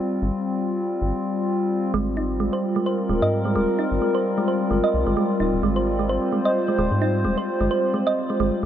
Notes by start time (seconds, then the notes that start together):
Already playing: G3 C4 F4
0.22 G#1
1.02 G#1
1.94 G#1 G#3
2.17 D#4
2.40 G#3
2.53 C5
2.60 A#4
2.76 G#3
2.86 C5
3.09 D#1 G#3
3.22 G#2 D#5
3.45 G#3
3.56 D#1 G#3
3.79 D#4
3.92 G#1
4.02 G#3
4.15 C5
4.38 G#3
4.48 C5
4.71 G#1 G#3
4.84 D#5
4.94 C2
5.07 G#1 G#3
5.17 G#3
5.40 D#1 D#4
5.53 D#1
5.63 G#1 G#3
5.76 C5
5.95 C5
5.99 G#3
6.09 C5
6.32 G#3
6.45 D#5
6.68 G#3
6.78 D#1 G#3
6.91 G#2
7.02 D#4
7.25 D#1 G#3
7.38 C5
7.61 G#1 G#3
7.71 C5
7.94 G#3
8.07 D#5
8.30 G#3
8.40 G#1 G#3